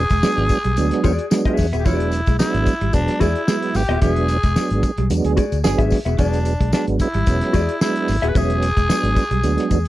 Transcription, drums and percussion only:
0.10 kick medium
0.10 closed hi-hat medium
0.10 tambourine soft
0.23 snare loud
0.23 tambourine medium
0.37 closed hi-hat soft
0.49 kick medium
0.49 closed hi-hat medium
0.49 tambourine medium
0.64 closed hi-hat medium
0.77 closed hi-hat medium
0.77 tambourine medium
0.91 snare soft
0.91 closed hi-hat medium
1.04 kick medium
1.04 closed hi-hat medium
1.04 tambourine medium
1.19 closed hi-hat medium
1.31 snare medium
1.31 tambourine loud
1.45 kick loud
1.45 closed hi-hat soft
1.57 kick loud
1.57 snare soft
1.57 open hi-hat medium
1.57 tambourine medium
1.73 closed hi-hat soft
1.73 tambourine soft
1.85 kick loud
1.85 closed hi-hat medium
1.85 tambourine medium
2.00 closed hi-hat medium
2.12 closed hi-hat medium
2.12 tambourine medium
2.26 kick medium
2.26 closed hi-hat medium
2.26 tambourine soft
2.39 snare loud
2.39 tambourine medium
2.54 closed hi-hat soft
2.66 kick medium
2.66 closed hi-hat medium
2.66 tambourine medium
2.81 closed hi-hat medium
2.93 kick loud
2.93 closed hi-hat medium
2.93 tambourine medium
3.08 snare soft
3.08 closed hi-hat medium
3.21 kick medium
3.21 closed hi-hat medium
3.21 tambourine medium
3.35 closed hi-hat soft
3.48 snare loud
3.48 tambourine loud
3.62 closed hi-hat medium
3.74 snare soft
3.74 open hi-hat medium
3.74 tambourine medium
3.89 closed hi-hat soft
4.02 kick loud
4.02 closed hi-hat medium
4.02 tambourine medium
4.16 closed hi-hat medium
4.28 closed hi-hat medium
4.28 tambourine medium
4.43 kick medium
4.43 closed hi-hat medium
4.43 tambourine soft
4.56 snare loud
4.56 tambourine medium
4.70 closed hi-hat soft
4.83 kick medium
4.83 closed hi-hat medium
4.83 tambourine medium
4.98 closed hi-hat soft
5.10 closed hi-hat loud
5.10 tambourine medium
5.25 closed hi-hat medium
5.37 kick medium
5.37 closed hi-hat medium
5.37 tambourine medium
5.52 closed hi-hat medium
5.52 tambourine soft
5.64 snare loud
5.64 tambourine loud
5.79 kick medium
5.79 closed hi-hat soft
5.90 kick medium
5.90 snare soft
5.90 open hi-hat medium
5.90 tambourine medium
6.06 closed hi-hat soft
6.06 tambourine soft
6.18 kick loud
6.18 closed hi-hat medium
6.18 tambourine medium
6.33 closed hi-hat medium
6.33 tambourine soft
6.45 closed hi-hat medium
6.45 tambourine medium
6.61 kick medium
6.61 closed hi-hat medium
6.73 snare loud
6.73 tambourine medium
6.87 closed hi-hat soft
6.99 kick medium
6.99 closed hi-hat medium
6.99 tambourine medium
7.14 closed hi-hat soft
7.26 kick loud
7.26 closed hi-hat medium
7.26 tambourine medium
7.41 snare soft
7.41 closed hi-hat medium
7.54 kick medium
7.54 closed hi-hat medium
7.54 tambourine medium
7.69 closed hi-hat medium
7.81 snare medium
7.81 tambourine loud
7.96 closed hi-hat soft
8.08 snare soft
8.08 open hi-hat medium
8.08 tambourine medium
8.23 closed hi-hat soft
8.35 kick loud
8.35 closed hi-hat medium
8.35 tambourine medium
8.50 closed hi-hat soft
8.62 closed hi-hat medium
8.62 tambourine medium
8.77 kick medium
8.77 closed hi-hat medium
8.77 tambourine soft
8.90 snare loud
8.90 tambourine loud
9.04 closed hi-hat soft
9.16 kick medium
9.16 closed hi-hat medium
9.16 tambourine medium
9.31 closed hi-hat medium
9.43 closed hi-hat medium
9.43 tambourine medium
9.58 snare soft
9.58 closed hi-hat medium
9.71 kick medium
9.71 closed hi-hat medium
9.71 tambourine medium

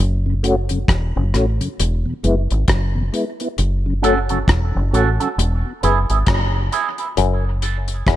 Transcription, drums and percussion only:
0.44 closed hi-hat medium
0.69 closed hi-hat medium
0.88 kick loud
0.88 cross-stick loud
0.88 closed hi-hat medium
1.34 cross-stick medium
1.34 closed hi-hat medium
1.61 closed hi-hat medium
1.80 closed hi-hat loud
2.24 closed hi-hat medium
2.51 closed hi-hat medium
2.68 kick loud
2.68 cross-stick loud
2.68 closed hi-hat medium
3.14 closed hi-hat medium
3.40 closed hi-hat soft
3.58 closed hi-hat medium
4.04 closed hi-hat medium
4.29 closed hi-hat medium
4.48 kick loud
4.48 cross-stick loud
4.48 closed hi-hat medium
4.94 closed hi-hat medium
5.20 closed hi-hat medium
5.39 closed hi-hat loud
5.83 closed hi-hat medium
6.10 closed hi-hat medium
6.27 kick loud
6.27 cross-stick loud
6.27 closed hi-hat medium
6.72 closed hi-hat medium
6.98 closed hi-hat soft
7.17 closed hi-hat medium
7.62 closed hi-hat medium
7.88 closed hi-hat medium
8.07 kick loud
8.07 cross-stick medium
8.07 closed hi-hat medium

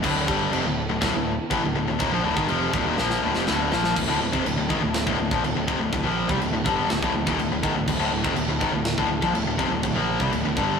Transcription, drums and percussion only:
0.04 kick loud
0.04 crash loud
0.04 china medium
0.28 kick loud
0.53 china medium
1.02 kick loud
1.02 snare loud
1.02 china medium
1.51 kick loud
1.51 china medium
2.00 kick loud
2.00 china medium
2.37 kick loud
2.48 china medium
2.74 kick loud
2.98 snare medium
3.10 snare medium
3.35 snare medium
3.47 snare medium
3.72 snare medium
3.84 snare medium
3.96 kick medium
3.96 crash loud
3.96 china medium
4.33 kick loud
4.46 china medium
4.70 kick loud
4.94 snare loud
4.94 china medium
5.07 kick loud
5.31 kick loud
5.44 china medium
5.68 kick loud
5.93 kick loud
5.93 china medium
6.29 kick loud
6.41 china medium
6.66 kick loud
6.90 snare loud
6.90 china medium
7.03 kick loud
7.27 kick loud
7.39 china medium
7.63 kick loud
7.88 kick medium
7.88 crash loud
7.88 china medium
8.25 kick loud
8.36 china medium
8.61 kick loud
8.85 snare loud
8.85 china medium
8.98 kick loud
9.22 kick loud
9.35 china medium
9.59 kick loud
9.83 kick medium
9.83 china medium
10.20 kick loud
10.32 china medium
10.57 kick loud

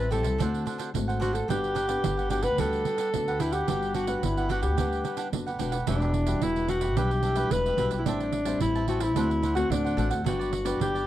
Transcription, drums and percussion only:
0.00 pandeiro soft
0.12 pandeiro soft
0.24 pandeiro medium
0.40 pandeiro medium
0.54 pandeiro soft
0.67 pandeiro soft
0.80 pandeiro medium
0.95 pandeiro medium
1.09 pandeiro soft
1.22 pandeiro medium
1.35 pandeiro medium
1.50 pandeiro medium
1.64 pandeiro soft
1.76 pandeiro medium
1.89 pandeiro medium
2.04 pandeiro medium
2.19 pandeiro soft
2.30 pandeiro medium
2.43 pandeiro medium
2.58 pandeiro medium
2.73 pandeiro soft
2.85 pandeiro soft
2.98 pandeiro medium
3.14 pandeiro medium
3.28 pandeiro soft
3.40 pandeiro medium
3.52 pandeiro medium
3.68 pandeiro medium
3.82 pandeiro soft
3.94 pandeiro soft
4.07 pandeiro medium
4.23 pandeiro medium
4.37 pandeiro soft
4.50 pandeiro medium
4.63 pandeiro medium
4.78 pandeiro medium
4.92 pandeiro soft
5.05 pandeiro soft
5.17 pandeiro medium
5.33 pandeiro medium
5.47 pandeiro soft
5.59 pandeiro medium
5.72 pandeiro medium
5.87 pandeiro medium
6.02 pandeiro soft
6.14 pandeiro soft
6.27 pandeiro medium
6.42 pandeiro medium
6.56 pandeiro soft
6.68 pandeiro medium
6.81 pandeiro medium
6.97 pandeiro medium
7.11 pandeiro soft
7.23 pandeiro soft
7.36 pandeiro medium
7.51 pandeiro medium
7.66 pandeiro soft
7.78 pandeiro medium
7.91 pandeiro medium
8.06 pandeiro medium
8.20 pandeiro soft
8.32 pandeiro medium
8.45 pandeiro medium
8.60 pandeiro medium
8.75 pandeiro soft
8.88 pandeiro medium
9.00 pandeiro medium
9.16 pandeiro medium
9.31 pandeiro soft
9.43 pandeiro medium
9.57 pandeiro medium
9.72 pandeiro medium
9.86 pandeiro soft
9.98 pandeiro medium
10.11 pandeiro medium
10.26 pandeiro medium
10.41 pandeiro soft
10.53 pandeiro medium
10.66 pandeiro medium
10.81 pandeiro medium
10.96 pandeiro soft

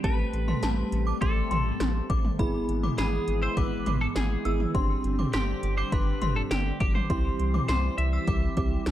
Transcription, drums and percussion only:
0.04 kick loud
0.04 closed hi-hat medium
0.34 closed hi-hat medium
0.48 mid tom medium
0.63 snare loud
0.63 closed hi-hat medium
0.92 closed hi-hat medium
1.22 kick medium
1.22 closed hi-hat medium
1.51 closed hi-hat medium
1.51 mid tom loud
1.80 snare loud
1.80 closed hi-hat medium
2.10 kick loud
2.10 closed hi-hat medium
2.25 mid tom medium
2.39 kick loud
2.39 closed hi-hat medium
2.69 closed hi-hat medium
2.83 mid tom medium
2.98 snare loud
2.98 closed hi-hat medium
3.28 closed hi-hat medium
3.57 kick medium
3.57 closed hi-hat medium
3.86 closed hi-hat medium
3.86 mid tom loud
4.16 snare loud
4.16 closed hi-hat medium
4.45 closed hi-hat medium
4.60 mid tom medium
4.75 kick loud
4.75 closed hi-hat medium
5.04 closed hi-hat medium
5.19 mid tom medium
5.33 snare loud
5.33 closed hi-hat medium
5.63 closed hi-hat medium
5.92 kick medium
5.92 closed hi-hat medium
6.22 closed hi-hat medium
6.22 mid tom loud
6.51 snare loud
6.51 closed hi-hat medium
6.80 kick loud
6.80 closed hi-hat medium
6.95 mid tom medium
7.10 kick loud
7.10 closed hi-hat medium
7.40 closed hi-hat medium
7.54 mid tom loud
7.68 snare loud
7.68 closed hi-hat medium
7.98 closed hi-hat medium
8.27 kick medium
8.27 closed hi-hat medium
8.57 kick loud
8.57 closed hi-hat medium
8.86 snare loud
8.86 closed hi-hat medium

